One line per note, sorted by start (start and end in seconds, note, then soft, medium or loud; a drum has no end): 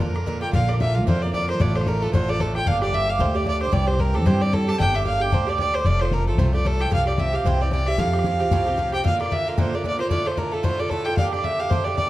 0.00 0.47 F2 medium
0.00 0.15 A#2 medium
0.00 0.15 D3 medium
0.00 0.15 A#3 medium
0.00 0.13 F4 medium
0.00 0.41 A#4 medium
0.00 bodhran medium
0.14 0.26 D3 soft
0.14 0.26 A#3 medium
0.14 0.26 F4 medium
0.14 bodhran medium
0.26 0.42 A#2 medium
0.26 0.42 D3 medium
0.26 0.41 A#3 medium
0.26 0.40 F4 medium
0.26 bodhran medium
0.41 0.52 D3 medium
0.41 0.53 A#3 medium
0.41 0.53 F4 medium
0.41 0.52 G5 medium
0.41 bodhran soft
0.53 1.07 A#1 loud
0.53 0.68 A#2 medium
0.53 0.68 D3 medium
0.53 0.68 A#3 medium
0.53 0.67 F4 medium
0.53 0.70 F5 medium
0.53 bodhran medium
0.68 0.80 D3 soft
0.68 0.80 A#3 soft
0.68 0.80 F4 medium
0.68 0.80 D5 medium
0.68 bodhran medium
0.74 bodhran medium
0.80 0.95 A#2 medium
0.80 0.95 D3 medium
0.80 0.94 A#3 medium
0.80 0.93 F4 medium
0.80 0.96 E5 medium
0.80 bodhran medium
0.95 1.06 D3 soft
0.95 1.07 A#3 soft
0.95 1.06 F4 medium
0.95 1.06 F5 medium
1.07 1.54 F2 medium
1.07 1.22 A#2 medium
1.07 1.22 D3 medium
1.07 1.22 A#3 medium
1.07 1.21 F4 loud
1.07 1.24 C5 medium
1.07 bodhran loud
1.22 1.34 D3 soft
1.22 1.34 A#3 soft
1.22 1.34 F4 medium
1.22 1.32 D5 medium
1.33 1.49 A#2 medium
1.33 1.49 D3 medium
1.33 1.49 A#3 medium
1.33 1.48 F4 medium
1.33 1.47 D5 loud
1.33 bodhran medium
1.49 1.59 D3 soft
1.49 1.60 A#3 soft
1.49 1.60 F4 medium
1.49 1.62 C5 medium
1.49 bodhran medium
1.60 2.07 A1 loud
1.60 1.75 A2 medium
1.60 1.75 D3 medium
1.60 1.75 A3 medium
1.60 1.74 F4 medium
1.60 1.78 D5 medium
1.60 bodhran loud
1.75 1.86 D3 soft
1.75 1.87 A3 medium
1.75 1.87 F4 medium
1.75 1.89 C5 medium
1.75 bodhran medium
1.81 bodhran medium
1.86 2.02 A2 medium
1.86 2.02 D3 medium
1.86 2.02 A3 medium
1.86 2.01 F4 medium
1.86 2.04 A#4 medium
1.86 bodhran medium
2.02 2.13 D3 soft
2.02 2.13 A3 medium
2.02 2.13 F4 medium
2.02 2.12 A4 medium
2.13 2.61 A1 medium
2.13 2.29 A2 medium
2.13 2.29 D3 medium
2.13 2.28 A3 medium
2.13 2.27 F4 medium
2.13 2.31 C5 medium
2.13 bodhran medium
2.29 2.40 D3 soft
2.29 2.40 A3 medium
2.29 2.40 F4 medium
2.29 2.42 D5 loud
2.40 2.55 A2 soft
2.40 2.56 D3 medium
2.40 2.56 A3 medium
2.40 2.55 F4 medium
2.40 2.55 A4 medium
2.40 bodhran medium
2.55 2.66 D3 soft
2.55 2.67 A3 soft
2.55 2.67 F4 medium
2.55 2.69 G5 medium
2.55 bodhran medium
2.66 3.21 G1 loud
2.66 2.82 A#2 medium
2.66 2.82 D3 medium
2.66 2.81 D4 medium
2.66 2.81 G4 medium
2.66 2.81 F5 loud
2.66 bodhran medium
2.82 2.93 D3 medium
2.82 2.93 D4 medium
2.82 2.93 G4 medium
2.82 2.96 D5 loud
2.82 bodhran medium
2.87 bodhran medium
2.93 3.08 A#2 medium
2.93 3.09 D3 medium
2.93 3.07 D4 medium
2.93 3.06 G4 medium
2.93 3.11 E5 loud
2.93 bodhran medium
3.08 3.19 D3 soft
3.08 3.19 D4 medium
3.08 3.19 G4 soft
3.08 3.22 F5 medium
3.19 3.67 D2 loud
3.19 3.35 A#2 medium
3.19 3.35 D3 medium
3.19 3.34 D4 medium
3.19 3.33 G4 medium
3.19 3.37 C5 medium
3.19 bodhran medium
3.35 3.44 D3 soft
3.35 3.46 D4 soft
3.35 3.46 G4 medium
3.35 3.47 D5 loud
3.45 3.61 A#2 medium
3.45 3.61 D3 medium
3.45 3.60 D4 medium
3.45 3.60 G4 medium
3.45 3.61 D5 loud
3.45 bodhran medium
3.61 3.72 D3 soft
3.61 3.72 D4 medium
3.61 3.72 G4 soft
3.61 3.74 C5 medium
3.61 bodhran medium
3.72 4.25 C2 loud
3.72 3.87 G2 medium
3.72 3.88 E3 medium
3.72 3.87 C4 medium
3.72 3.86 G4 medium
3.72 3.89 D5 medium
3.72 bodhran medium
3.87 3.98 E3 soft
3.87 3.99 C4 soft
3.87 3.99 G4 medium
3.87 4.01 C5 medium
3.87 bodhran medium
3.94 bodhran medium
3.99 4.14 G2 medium
3.99 4.14 E3 medium
3.99 4.14 C4 medium
3.99 4.13 G4 medium
3.99 4.17 A#4 loud
3.99 bodhran medium
4.14 4.25 E3 soft
4.14 4.25 C4 medium
4.14 4.26 G4 medium
4.14 4.28 A4 medium
4.14 bodhran medium
4.25 4.73 G2 medium
4.25 4.41 G2 medium
4.25 4.41 E3 medium
4.25 4.41 C4 medium
4.25 4.40 G4 medium
4.25 4.43 C5 medium
4.25 bodhran medium
4.41 4.51 E3 soft
4.41 4.52 C4 medium
4.41 4.52 G4 soft
4.41 4.55 D5 loud
4.41 bodhran medium
4.52 4.68 G2 medium
4.52 4.68 E3 medium
4.52 4.67 C4 medium
4.52 4.66 G4 medium
4.52 4.70 A4 loud
4.52 bodhran medium
4.67 4.79 E3 soft
4.67 4.79 C4 medium
4.67 4.79 G4 medium
4.67 4.79 A5 loud
4.67 bodhran medium
4.79 5.34 G1 loud
4.79 4.94 A#2 medium
4.79 4.94 D3 medium
4.79 4.94 D4 medium
4.79 4.93 G4 loud
4.79 4.97 G5 loud
4.79 bodhran medium
4.94 5.04 D3 soft
4.94 5.05 D4 medium
4.94 5.06 G4 medium
4.94 5.06 E5 medium
4.94 bodhran medium
5.00 bodhran medium
5.05 5.21 A#2 medium
5.05 5.20 D3 medium
5.05 5.19 D4 medium
5.05 5.19 G4 medium
5.05 5.23 F5 loud
5.05 bodhran medium
5.20 5.31 D3 soft
5.20 5.31 D4 soft
5.20 5.31 G4 medium
5.20 5.35 G5 medium
5.31 5.80 D2 medium
5.31 5.47 A#2 medium
5.31 5.47 D3 medium
5.31 5.46 D4 medium
5.31 5.45 G4 medium
5.31 5.50 C5 medium
5.31 bodhran medium
5.47 5.58 D3 medium
5.47 5.58 D4 medium
5.47 5.58 G4 medium
5.47 5.59 D5 loud
5.58 5.74 A#2 medium
5.58 5.74 D3 medium
5.58 5.74 D4 medium
5.58 5.72 G4 medium
5.58 5.76 D5 loud
5.58 bodhran medium
5.74 5.86 D3 soft
5.74 5.86 D4 soft
5.74 5.85 G4 medium
5.74 5.87 C5 medium
5.74 bodhran medium
5.85 6.38 F1 loud
5.85 6.01 C3 medium
5.85 6.01 F3 medium
5.85 6.01 A3 medium
5.85 6.00 F4 medium
5.85 6.02 D5 loud
5.85 bodhran medium
6.00 6.12 F3 soft
6.00 6.13 A3 soft
6.00 6.12 F4 medium
6.00 6.15 C5 medium
6.00 bodhran medium
6.05 bodhran medium
6.11 6.27 C3 medium
6.11 6.28 F3 medium
6.11 6.27 A3 medium
6.11 6.26 F4 medium
6.11 6.27 A#4 medium
6.11 bodhran medium
6.27 6.38 F3 soft
6.27 6.38 A3 medium
6.27 6.39 F4 medium
6.27 6.40 A4 medium
6.38 6.86 C2 loud
6.38 6.54 C3 medium
6.38 6.54 F3 medium
6.38 6.53 A3 medium
6.38 6.52 F4 medium
6.38 6.54 C5 medium
6.38 bodhran loud
6.53 6.64 F3 soft
6.53 6.65 A3 medium
6.53 6.65 F4 medium
6.53 6.68 D5 medium
6.65 6.80 C3 medium
6.65 6.80 F3 medium
6.65 6.79 A3 medium
6.65 6.79 F4 medium
6.65 6.83 A4 loud
6.65 bodhran medium
6.80 6.90 F3 soft
6.80 6.91 A3 medium
6.80 6.91 F4 medium
6.80 6.92 G5 loud
6.80 bodhran medium
6.90 7.39 C2 loud
6.90 7.06 G2 medium
6.90 7.06 F3 medium
6.90 7.05 C4 medium
6.90 7.04 G4 medium
6.90 7.06 F5 loud
6.90 bodhran medium
7.06 7.17 F3 soft
7.06 7.18 C4 soft
7.06 7.18 G4 medium
7.06 7.21 D5 medium
7.06 bodhran medium
7.13 bodhran medium
7.18 7.33 G2 medium
7.18 7.33 F3 medium
7.18 7.33 C4 medium
7.18 7.32 G4 medium
7.18 7.36 E5 loud
7.18 bodhran medium
7.33 7.46 F3 soft
7.33 7.45 C4 medium
7.33 7.45 G4 medium
7.33 7.47 F5 medium
7.45 7.92 C2 medium
7.45 7.60 G2 medium
7.45 7.61 E3 medium
7.45 7.60 C4 medium
7.45 7.59 G4 loud
7.45 7.63 C5 medium
7.45 bodhran medium
7.60 7.72 E3 soft
7.60 7.72 C4 medium
7.60 7.72 G4 medium
7.60 7.71 D5 medium
7.71 7.87 G2 medium
7.71 7.87 E3 medium
7.71 7.87 C4 medium
7.71 7.87 G4 medium
7.71 7.89 D5 medium
7.71 bodhran medium
7.87 7.99 E3 soft
7.87 7.98 C4 soft
7.87 7.98 G4 medium
7.87 8.01 E5 loud
7.87 bodhran medium
7.98 8.51 F2 loud
7.98 8.13 A2 medium
7.98 8.14 F3 medium
7.98 8.13 C4 medium
7.98 8.12 G4 medium
7.98 8.93 F5 medium
7.98 bodhran medium
8.13 8.24 F3 soft
8.13 8.25 C4 soft
8.13 8.25 G4 medium
8.13 bodhran medium
8.19 bodhran medium
8.24 8.40 A2 medium
8.24 8.40 F3 medium
8.24 8.40 C4 medium
8.24 8.39 G4 medium
8.24 bodhran medium
8.40 8.51 F3 medium
8.40 8.51 C4 medium
8.40 8.51 G4 medium
8.40 bodhran soft
8.51 8.99 C2 medium
8.51 8.67 A2 loud
8.51 8.67 F3 medium
8.51 8.66 C4 loud
8.51 8.65 G4 loud
8.51 bodhran loud
8.66 8.77 F3 soft
8.66 8.77 C4 medium
8.66 8.78 G4 medium
8.77 8.93 A2 medium
8.77 8.93 F3 medium
8.77 8.93 C4 medium
8.77 8.91 G4 medium
8.77 bodhran medium
8.92 9.04 F3 soft
8.92 9.04 C4 medium
8.92 9.04 G4 medium
8.92 9.04 G5 medium
8.92 bodhran medium
9.04 9.19 A#2 medium
9.04 9.20 D3 medium
9.04 9.19 A#3 medium
9.04 9.18 F4 medium
9.04 9.19 F5 medium
9.04 bodhran medium
9.19 9.30 D3 soft
9.19 9.31 A#3 soft
9.19 9.31 F4 medium
9.19 9.34 D5 medium
9.19 bodhran medium
9.26 bodhran medium
9.31 9.46 A#2 medium
9.31 9.47 D3 medium
9.31 9.46 A#3 medium
9.31 9.45 F4 medium
9.31 9.50 E5 medium
9.31 bodhran medium
9.46 9.57 D3 medium
9.46 9.57 A#3 medium
9.46 9.58 F4 medium
9.46 9.59 F5 medium
9.57 9.73 A#2 medium
9.57 9.73 D3 loud
9.57 9.73 A#3 medium
9.57 9.72 F4 medium
9.57 9.76 C5 medium
9.57 bodhran medium
9.73 9.84 D3 medium
9.73 9.84 A#3 medium
9.73 9.84 F4 medium
9.73 9.85 D5 medium
9.84 9.99 A#2 medium
9.84 9.99 D3 medium
9.84 9.99 A#3 medium
9.84 9.98 F4 medium
9.84 9.99 D5 loud
9.84 bodhran medium
9.99 10.10 D3 soft
9.99 10.11 A#3 medium
9.99 10.11 F4 medium
9.99 10.10 C5 medium
9.99 bodhran medium
10.10 10.26 A2 medium
10.10 10.26 D3 loud
10.10 10.25 A3 loud
10.10 10.24 F4 medium
10.10 10.28 D5 loud
10.10 bodhran medium
10.25 10.36 D3 soft
10.25 10.37 A3 medium
10.25 10.37 F4 medium
10.25 10.39 C5 medium
10.25 bodhran medium
10.32 bodhran medium
10.37 10.53 A2 medium
10.37 10.53 D3 medium
10.37 10.52 A3 medium
10.37 10.50 F4 medium
10.37 10.54 A#4 medium
10.37 bodhran medium
10.52 10.63 D3 soft
10.52 10.63 A3 medium
10.52 10.63 F4 medium
10.52 10.65 A4 medium
10.63 10.79 A2 medium
10.63 10.79 D3 medium
10.63 10.79 A3 medium
10.63 10.78 F4 medium
10.63 10.81 C5 medium
10.63 bodhran medium
10.79 10.90 D3 soft
10.79 10.91 A3 medium
10.79 10.91 F4 medium
10.79 10.91 D5 medium
10.90 11.06 A2 medium
10.90 11.06 D3 medium
10.90 11.05 A3 medium
10.90 11.05 F4 medium
10.90 11.06 A4 medium
10.90 bodhran medium
11.05 11.17 D3 soft
11.05 11.18 A3 soft
11.05 11.18 F4 medium
11.05 11.16 G5 medium
11.05 bodhran medium
11.17 11.33 A#2 medium
11.17 11.33 D3 medium
11.17 11.32 D4 medium
11.17 11.31 G4 medium
11.17 11.31 F5 medium
11.17 bodhran medium
11.32 11.43 D3 soft
11.32 11.44 D4 soft
11.32 11.44 G4 medium
11.32 11.45 D5 medium
11.32 bodhran medium
11.39 bodhran medium
11.44 11.59 A#2 medium
11.44 11.60 D3 medium
11.44 11.59 D4 medium
11.44 11.58 G4 medium
11.44 11.61 E5 loud
11.44 bodhran medium
11.59 11.70 D3 soft
11.59 11.71 D4 medium
11.59 11.71 G4 medium
11.59 11.71 F5 medium
11.70 11.86 A#2 medium
11.70 11.86 D3 medium
11.70 11.86 D4 medium
11.70 11.85 G4 medium
11.70 11.86 C5 loud
11.70 bodhran loud
11.84 11.97 D3 medium
11.84 11.97 D4 soft
11.84 11.97 G4 medium
11.84 11.95 D5 medium
11.96 12.10 A#2 medium
11.96 12.10 D3 medium
11.96 12.10 D4 medium
11.96 12.10 G4 medium
11.96 12.10 D5 loud
11.96 bodhran medium